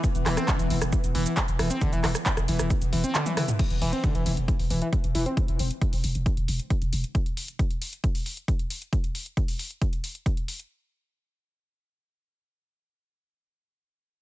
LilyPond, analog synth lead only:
\new Staff \with { instrumentName = "Analog synth lead" } { \clef bass \time 4/4 \key c \major \tempo 4 = 135 r8 e16 c'16 d16 e16 e16 r8. e16 e16 r8 e16 c'16 | d16 e16 e16 r8. e16 e16 r8 e16 c'16 d16 e16 e16 r16 | r8 e16 c'16 d16 e16 e16 r8. e16 e16 r8 e16 c'16 | r1 |
r1 | r1 | r1 | r1 | }